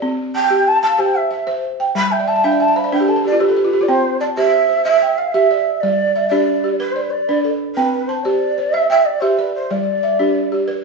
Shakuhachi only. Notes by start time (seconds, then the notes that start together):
0.35 G5
0.67 A5
0.82 A5
0.99 G5
1.17 E5
1.96 B5
2.11 G5
2.27 A5
2.44 G5
2.61 A5
2.76 B5
2.92 G5
3.08 A5
3.25 D5
3.40 B4
3.82 D5
3.88 C5
4.20 D5
4.37 E5
4.84 E5
5.17 F5
5.32 E5
5.80 D5
6.28 D5
6.78 B4
6.91 C5
7.01 B4
7.10 D5
7.74 B4
8.07 C5
8.23 D5
8.73 E5
8.89 E5
9.05 D5
9.20 C5
9.37 B4
9.54 C5
9.71 D5